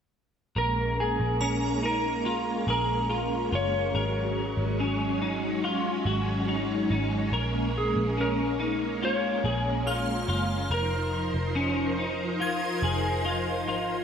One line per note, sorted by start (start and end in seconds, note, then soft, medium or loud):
0.55 1.17 A#1 medium
0.55 10.66 G#3 medium
0.55 3.91 A#3 medium
0.55 10.66 C#4 medium
0.55 1.41 A#4 medium
0.55 0.97 A#4 medium
1.00 1.80 G#4 medium
1.20 2.64 A#1 medium
1.41 1.82 C#4 medium
1.41 4.05 A#5 medium
1.83 2.25 D#4 medium
1.83 2.69 A#4 medium
2.25 2.68 F4 medium
2.67 3.48 A#1 medium
2.67 3.09 G#4 medium
2.67 3.50 A#4 medium
3.10 3.51 F4 medium
3.52 3.93 F#1 medium
3.52 3.94 F4 medium
3.52 4.34 C#5 medium
3.94 4.55 G#1 medium
3.94 7.29 F#3 medium
3.94 4.79 A#4 medium
4.57 6.02 G#1 medium
4.80 5.21 C#4 medium
5.21 5.64 D#4 medium
5.64 6.06 F4 medium
6.05 6.86 G#1 medium
6.05 6.48 F#4 medium
6.48 6.89 D#4 medium
6.90 7.31 G#1 medium
6.90 7.33 D#4 medium
7.32 7.93 A#1 medium
7.32 10.67 A#3 medium
7.32 8.17 A#4 medium
7.78 8.20 G#4 medium
7.96 9.40 A#1 medium
8.17 8.59 C#4 medium
8.17 9.06 A#4 medium
8.59 9.02 D#4 medium
9.03 9.44 F4 medium
9.03 10.16 C#5 medium
9.44 10.25 A#1 medium
9.44 9.86 G#4 medium
9.87 10.27 F4 medium
9.87 11.10 F6 medium
10.16 10.77 C5 medium
10.28 10.69 F#1 medium
10.28 10.71 F4 medium
10.70 11.31 F1 loud
10.70 14.04 F3 medium
10.70 14.04 D#4 medium
10.70 14.04 A#4 medium
10.70 11.56 A#4 medium
10.70 13.22 A#4 medium
10.70 14.04 C5 medium
11.34 12.78 F1 medium
11.55 11.98 C#4 medium
11.98 12.40 D#4 medium
12.40 12.82 F4 medium
12.40 14.04 G#6 medium
12.83 13.67 F1 medium
12.83 13.24 G#4 medium
13.25 13.66 F4 medium
13.67 14.04 G#1 medium
13.67 14.04 F4 medium